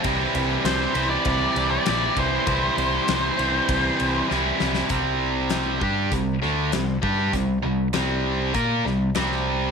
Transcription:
<<
  \new Staff \with { instrumentName = "Lead electric guitar" } { \time 4/4 \key c \mixolydian \tempo 4 = 99 r4 c''8. d''4 d''8. c''8~ | c''2. r4 | r1 | r1 | }
  \new Staff \with { instrumentName = "Distorted electric guitar" } { \clef bass \time 4/4 \key c \mixolydian <c e g c' e'>4. <c e g c' e'>4. <c e g c' e'>4 | <c e g c' e'>4. <c e g c' e'>4. <c e g c' e'>4 | <c g c'>4. <g d' g'>8 <c g>8 <d a d'>8 <c g>8 <g d' g'>8 | <c g>8 <c g>8 <c g c'>4 <bes f' bes'>8 <c g>8 <c g c'>4 | }
  \new Staff \with { instrumentName = "Picked electric bass" } { \clef bass \time 4/4 \key c \mixolydian c,8 c,8 c,8 c,8 c,8 c,8 bes,,8 c,8 | c,8 c,8 c,8 c,8 c,8 c,8 c,8 c,8 | c,4. g,8 c,8 d,8 c,8 g,8 | c,8 c,8 c,4 bes,8 c,8 c,4 | }
  \new DrumStaff \with { instrumentName = "Drums" } \drummode { \time 4/4 <bd cymr>8 cymr8 <cymr sn>8 cymr8 <bd cymr>8 cymr8 <cymr sn>8 <bd cymr>8 | <bd cymr>8 cymr8 <cymr sn>8 cymr8 <bd cymr>8 cymr8 sn8 sn16 sn16 | <hh bd>4 <hh sn>8 bd8 <hh bd>8 sn8 <hh sn>8 bd8 | <hh bd>4 <hh sn>4 <hh bd>8 sn8 <hh sn>16 sn8. | }
>>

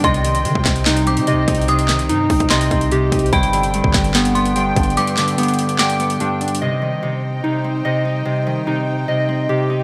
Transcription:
<<
  \new Staff \with { instrumentName = "Synth bell" } { \time 4/4 \key c \minor \tempo 4 = 146 c'''4 r4. d'''8 r4 | ees'''2 c'''4 r4 | b''4 r4. c'''8 r4 | d'''2 d'''2 |
r1 | r1 | }
  \new Staff \with { instrumentName = "Synth keys" } { \time 4/4 \key c \minor ees''2 ees'4 ees''4~ | ees''4 ees'4 ees''4 g'4 | g''2 b4 g''4~ | g''4 b4 g''4 d'4 |
ees''2 ees'4 ees''4~ | ees''4 ees'4 ees''4 g'4 | }
  \new Staff \with { instrumentName = "String section" } { \time 4/4 \key c \minor <g ees' c'' g''>1~ | <g ees' c'' g''>1 | <g d' b' g''>1~ | <g d' b' g''>1 |
<g ees' c'' g''>1~ | <g ees' c'' g''>1 | }
  \new Staff \with { instrumentName = "Harp" } { \clef bass \time 4/4 \key c \minor c8 ees8 c4 c8 c'8 c8 ees'8 | c8 ees8 c4 c8 c'8 c8 ees'8 | g,8 d8 g,4 g,8 b8 g,8 d'8 | g,8 d8 g,4 g,8 b8 g,8 d'8 |
c8 ees8 c4 c8 c'8 c8 ees'8 | c8 ees8 c4 c8 c'8 c8 ees'8 | }
  \new Staff \with { instrumentName = "808-style bass" } { \clef bass \time 4/4 \key c \minor c,4 ees16 c,16 c,4~ c,16 c16. c,16. c,8~ | c,4 g,8 c,16 c,8. c,4 c,8 | g,,4~ g,,16 g,,16 g,,2 g,,8 | r1 |
r1 | r1 | }
  \new DrumStaff \with { instrumentName = "Drums" } \drummode { \time 4/4 <hh bd>16 hh16 hh16 hh16 hh16 bd16 <hc hh bd sn>16 hh16 <hc hh sn>16 hh16 hh16 hh16 \tuplet 3/2 { hh16 r16 r16 <hh bd>16 hh16 hh16 } | hh16 hh16 <hc hh sn>16 hh16 hh8 <hho bd>16 <hh bd>16 <hc hh sn>16 hh16 <hh bd>16 hh16 \tuplet 3/2 { hh16 r16 r16 <hh bd>16 hh16 hh16 } | <hh bd>16 hh16 hh16 hh16 hh16 bd16 <hc hh bd sn>16 hh16 <hc hh sn>16 hh16 hh16 hh16 \tuplet 3/2 { hh16 r16 r16 <hh bd>16 hh16 hh16 } | hh16 hh16 <hc hh sn>16 hh16 hh32 hh32 hh32 hh32 hh16 hh16 <hc hh sn>16 hh16 hh16 hh16 \tuplet 3/2 { hh16 r16 r16 hh16 hh16 hh16 } |
r4 r4 r4 r4 | r4 r4 r4 r4 | }
>>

